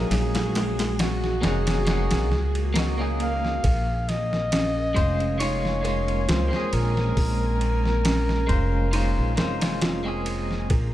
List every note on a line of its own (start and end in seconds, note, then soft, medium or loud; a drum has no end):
0.00 1.36 A#3 medium
0.00 1.38 C#4 medium
0.00 1.39 D#4 medium
0.00 3.61 F#4 medium
0.00 1.40 G#4 medium
0.00 3.61 G#4 medium
0.11 1.39 A#1 loud
0.11 1.01 G#4 loud
0.11 snare loud
0.11 ride medium
0.35 snare loud
0.35 ride medium
0.55 snare loud
0.55 ride medium
0.79 snare loud
0.79 ride medium
0.99 1.46 F#4 loud
0.99 snare loud
0.99 ride medium
1.24 snare soft
1.41 2.07 F1 loud
1.41 1.82 A#3 medium
1.41 1.82 C#4 medium
1.41 1.83 D#4 medium
1.41 1.84 F#4 medium
1.41 2.95 G#4 loud
1.41 snare loud
1.41 ride medium
1.67 snare loud
1.67 ride medium
1.86 2.27 A#3 loud
1.86 2.27 C#4 medium
1.86 2.28 D#4 medium
1.86 snare loud
1.86 ride medium
1.86 swell medium
1.90 2.29 F#4 loud
2.11 2.32 A#1 medium
2.11 snare medium
2.11 ride medium
2.32 3.60 C#2 loud
2.32 snare soft
2.55 ride medium
2.74 2.93 A#3 medium
2.74 2.95 D#4 medium
2.74 snare loud
2.74 ride medium
2.78 2.95 F#4 loud
2.98 3.61 A#3 loud
2.98 3.61 C#4 medium
2.98 3.62 D#4 medium
2.98 3.63 G#4 loud
3.20 4.11 F5 loud
3.20 ride medium
3.45 snare soft
3.64 4.93 A#1 medium
3.64 4.06 A#4 medium
3.64 10.66 A#4 medium
3.64 10.66 G#5 medium
3.64 10.94 A#5 medium
3.64 kick loud
3.64 ride medium
4.09 5.43 D#5 loud
4.09 snare soft
4.09 ride medium
4.33 snare soft
4.52 5.37 C#4 medium
4.52 snare loud
4.52 ride medium
4.95 6.25 F1 loud
4.95 5.35 G#3 medium
4.95 5.36 C#4 medium
4.95 5.35 C5 medium
4.95 kick medium
4.95 ride medium
4.99 5.37 F4 medium
5.20 ride soft
5.38 5.79 G#3 loud
5.38 5.81 C#4 medium
5.38 5.81 D#4 loud
5.38 5.80 C#5 medium
5.38 6.31 C#5 loud
5.38 ride medium
5.42 5.81 F4 loud
5.65 snare soft
5.81 6.45 G#3 medium
5.81 6.47 C#4 medium
5.81 6.27 A#4 loud
5.81 6.46 C#5 medium
5.81 ride medium
5.86 6.47 F4 medium
6.08 ride soft
6.29 6.50 C#2 loud
6.29 6.71 F4 loud
6.29 6.75 C5 loud
6.29 snare loud
6.29 ride medium
6.48 8.42 G#3 medium
6.48 8.44 C4 medium
6.53 8.45 C#4 medium
6.53 8.46 G#4 medium
6.53 snare soft
6.73 7.12 A#1 medium
6.73 10.26 A#4 loud
6.73 ride medium
6.97 snare soft
7.17 8.46 A#1 loud
7.17 7.59 A#4 medium
7.17 kick loud
7.17 open hi-hat medium
7.61 ride medium
7.86 snare soft
8.05 8.90 C#4 medium
8.05 snare loud
8.05 ride medium
8.29 snare soft
8.47 9.13 F1 loud
8.47 8.87 G#3 medium
8.47 8.89 C#4 medium
8.47 8.88 C5 medium
8.47 kick medium
8.47 ride medium
8.52 8.90 F4 medium
8.91 9.32 G#3 loud
8.91 9.34 C#4 medium
8.91 9.33 D#4 loud
8.91 9.33 C5 medium
8.91 ride medium
8.96 9.35 F4 loud
9.18 9.37 A#1 medium
9.36 10.66 F1 medium
9.36 9.99 G#3 medium
9.36 10.01 C#4 medium
9.36 9.80 A#4 loud
9.36 10.00 C5 medium
9.36 snare loud
9.36 ride medium
9.41 10.01 F4 medium
9.61 snare loud
9.61 ride medium
9.81 10.24 F4 loud
9.81 snare loud
9.81 ride loud
10.04 10.67 G#3 medium
10.04 10.67 C4 medium
10.04 10.68 C#4 medium
10.08 10.69 G#4 medium
10.26 ride medium
10.51 snare soft
10.70 10.94 A#1 loud
10.70 10.94 G#4 medium
10.70 10.94 A#4 medium
10.70 kick loud
10.70 ride medium